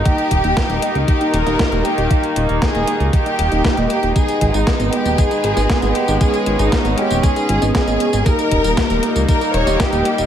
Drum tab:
HH |xxxxxxxxxxxxxxxx|xxxxxxxxxxxxxxxx|xxxxxxxxxxxxxxxx|xxxxxxxxxxxxxxxx|
TB |----------------|----------------|xx-xxx-xxx-xxx-x|xx-xxx-xxx-xxx-x|
SD |----o------oo---|----o-------o---|----o------oo---|----o-------o---|
BD |o-o-o---o---o---|o---o---o---o---|o-o-o---o---o---|o---o---o---o---|

HH |xxxxxxxxxxxxxxxx|
TB |xx-xxx-xxx-xxx-x|
SD |----o------oo---|
BD |o-o-o---o---o---|